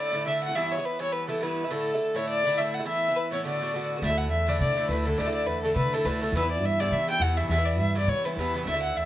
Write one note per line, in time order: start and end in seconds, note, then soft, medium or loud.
0.00 0.11 A2 medium
0.00 0.12 D3 medium
0.00 0.13 A3 medium
0.00 0.14 E4 medium
0.00 0.26 D5 loud
0.12 0.24 A2 medium
0.12 0.25 D3 medium
0.12 0.26 A3 medium
0.12 0.26 E4 medium
0.25 0.48 A2 soft
0.25 0.48 D3 medium
0.25 0.48 A3 medium
0.25 0.47 E4 medium
0.25 0.41 E5 medium
0.44 0.57 F#5 medium
0.48 0.56 D3 soft
0.48 0.55 A3 soft
0.48 0.55 E4 soft
0.55 0.77 G2 medium
0.55 0.78 E3 medium
0.55 0.77 B3 medium
0.55 0.76 E4 medium
0.55 0.73 E5 medium
0.72 0.87 C#5 medium
0.77 0.98 E3 soft
0.77 0.99 B3 soft
0.77 0.99 E4 soft
0.85 1.00 B4 medium
0.99 1.26 G2 medium
0.99 1.28 E3 medium
0.99 1.28 B3 medium
0.99 1.29 E4 medium
0.99 1.14 C#5 medium
1.13 1.29 B4 medium
1.28 1.40 G2 medium
1.28 1.41 E3 medium
1.28 1.42 B3 medium
1.28 1.42 E4 medium
1.28 1.44 A4 medium
1.41 1.64 G2 medium
1.41 1.64 E3 medium
1.41 1.64 B3 medium
1.41 1.63 E4 medium
1.41 1.65 B4 medium
1.64 1.70 E3 soft
1.64 1.70 B3 soft
1.64 1.70 E4 soft
1.64 1.73 B4 medium
1.70 1.93 A2 medium
1.70 1.93 D3 medium
1.70 1.93 A3 medium
1.70 1.93 E4 medium
1.70 2.17 A4 medium
1.94 2.14 D3 soft
1.94 2.15 A3 soft
1.94 2.16 E4 medium
2.15 2.43 A2 medium
2.15 2.44 D3 medium
2.15 2.46 A3 medium
2.15 2.45 E4 medium
2.15 2.29 C#5 medium
2.29 2.59 D5 loud
2.44 2.57 A2 medium
2.44 2.58 D3 medium
2.44 2.58 A3 medium
2.44 2.59 E4 medium
2.57 2.80 A2 medium
2.57 2.80 D3 medium
2.57 2.79 A3 medium
2.57 2.78 E4 medium
2.57 2.76 E5 medium
2.74 2.87 F#5 medium
2.79 2.85 D3 soft
2.79 2.85 A3 soft
2.79 2.85 E4 medium
2.85 3.08 A2 medium
2.85 3.08 E3 medium
2.85 3.08 B3 medium
2.85 3.07 E4 medium
2.85 3.18 E5 medium
3.08 3.31 E3 soft
3.08 3.32 B3 soft
3.08 3.31 E4 medium
3.16 3.32 B4 medium
3.31 3.43 A2 medium
3.31 3.45 E3 medium
3.31 3.44 B3 medium
3.31 3.45 E4 medium
3.31 3.44 C#5 medium
3.44 3.59 A2 medium
3.44 3.61 D3 medium
3.44 3.61 B3 medium
3.44 3.61 F#4 medium
3.44 3.87 D5 medium
3.60 3.72 A2 medium
3.60 3.74 D3 medium
3.60 3.74 B3 medium
3.60 3.75 F#4 medium
3.73 3.96 A2 medium
3.73 3.97 D3 medium
3.73 3.97 B3 medium
3.73 3.95 F#4 medium
3.96 4.01 D3 soft
3.96 4.03 B3 soft
3.96 4.02 F#4 soft
4.02 4.31 D2 medium
4.02 4.10 A2 medium
4.02 4.10 D3 medium
4.02 4.09 A3 medium
4.02 4.09 E4 medium
4.02 4.19 E5 medium
4.10 4.46 D3 soft
4.10 4.47 A3 soft
4.10 4.49 E4 medium
4.18 4.30 F#5 medium
4.31 4.62 E2 medium
4.31 4.50 E5 medium
4.47 4.75 A2 medium
4.47 4.76 D3 medium
4.47 4.77 A3 medium
4.47 4.79 E4 medium
4.47 4.60 D5 medium
4.60 4.84 D3 medium
4.60 4.87 D5 medium
4.76 4.89 A2 medium
4.76 4.90 D3 medium
4.76 4.90 A3 medium
4.76 4.91 E4 medium
4.89 5.13 D2 medium
4.89 5.04 A2 medium
4.89 5.05 D3 medium
4.89 5.07 A3 medium
4.89 5.07 B4 medium
4.93 5.07 E4 medium
5.05 5.18 A2 medium
5.05 5.19 D3 medium
5.05 5.19 A3 medium
5.05 5.20 E4 medium
5.05 5.20 A4 medium
5.18 5.46 D2 medium
5.18 5.27 A2 medium
5.18 5.27 D3 medium
5.18 5.27 A3 medium
5.18 5.25 E4 medium
5.18 5.34 D5 medium
5.27 5.64 D3 soft
5.27 5.64 A3 medium
5.27 5.65 E4 medium
5.34 5.48 D5 medium
5.46 5.77 E2 loud
5.46 5.62 B4 medium
5.62 5.91 A2 soft
5.62 5.93 D3 medium
5.62 5.93 A3 medium
5.62 5.94 E4 medium
5.62 5.75 A4 medium
5.76 6.00 D3 medium
5.76 5.95 B4 medium
5.93 6.04 A2 medium
5.93 6.05 D3 medium
5.93 6.06 A3 medium
5.93 6.06 E4 medium
5.93 6.06 A4 medium
6.05 6.29 D2 medium
6.05 6.20 A2 medium
6.05 6.21 D3 medium
6.05 6.22 A3 medium
6.05 6.22 E4 medium
6.05 6.23 B4 medium
6.21 6.34 A2 medium
6.21 6.35 D3 medium
6.21 6.35 A3 medium
6.21 6.36 E4 medium
6.21 6.35 A4 medium
6.32 6.62 E2 medium
6.32 6.43 G2 medium
6.32 6.43 E3 medium
6.32 6.43 B3 medium
6.36 6.41 E4 medium
6.36 6.50 B4 medium
6.43 6.80 E3 soft
6.43 6.80 B3 soft
6.43 6.82 E4 medium
6.51 6.67 D5 medium
6.62 6.93 G2 loud
6.66 6.81 E5 medium
6.80 7.07 G2 medium
6.80 7.09 E3 medium
6.80 7.08 B3 medium
6.80 7.10 E4 medium
6.80 6.94 D5 medium
6.91 7.16 E3 medium
6.91 7.09 E5 loud
7.08 7.21 G2 medium
7.08 7.21 E3 medium
7.08 7.22 B3 medium
7.08 7.23 E4 medium
7.08 7.23 G5 loud
7.20 7.45 E2 medium
7.20 7.36 G2 medium
7.20 7.36 E3 medium
7.20 7.37 B3 medium
7.20 7.39 F#5 medium
7.24 7.38 E4 medium
7.37 7.50 G2 medium
7.37 7.50 E3 medium
7.37 7.50 B3 medium
7.37 7.51 E4 medium
7.37 7.50 E5 medium
7.49 7.79 E2 medium
7.49 7.59 G2 medium
7.49 7.59 E3 medium
7.49 7.57 B3 medium
7.49 7.56 E4 medium
7.49 7.67 E5 medium
7.58 7.95 E3 soft
7.58 7.95 B3 medium
7.58 7.97 E4 medium
7.65 7.79 D5 medium
7.79 8.09 G2 medium
7.79 7.94 E5 medium
7.95 8.23 G2 medium
7.95 8.25 E3 medium
7.95 8.25 B3 medium
7.95 8.26 E4 medium
7.95 8.10 D5 medium
8.08 8.32 E3 medium
8.08 8.26 C#5 loud
8.24 8.37 G2 medium
8.24 8.38 E3 medium
8.24 8.39 B3 medium
8.24 8.39 E4 medium
8.24 8.37 B4 medium
8.37 8.61 E2 medium
8.37 8.53 G2 medium
8.37 8.54 E3 medium
8.37 8.54 B3 medium
8.37 8.65 B4 medium
8.41 8.55 E4 medium
8.54 8.66 G2 medium
8.54 8.67 E3 medium
8.54 8.67 B3 medium
8.54 8.66 E4 medium
8.66 8.95 D2 medium
8.66 8.75 A2 medium
8.66 8.75 D3 medium
8.66 8.75 A3 medium
8.66 8.73 E4 medium
8.66 8.81 E5 medium
8.74 9.05 D3 soft
8.74 9.05 A3 medium
8.74 9.05 E4 medium
8.82 8.98 F#5 medium
8.95 9.05 E2 medium
8.95 9.05 E5 medium